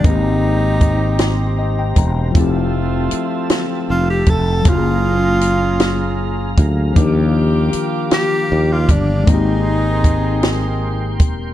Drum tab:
HH |x-xx-x|x-xx-x|x-xx-x|x-xx-x|
SD |---o--|---o--|---o--|---o--|
BD |o-o--o|o----o|o----o|o----o|

HH |x-xx-x|
SD |---o--|
BD |o-o--o|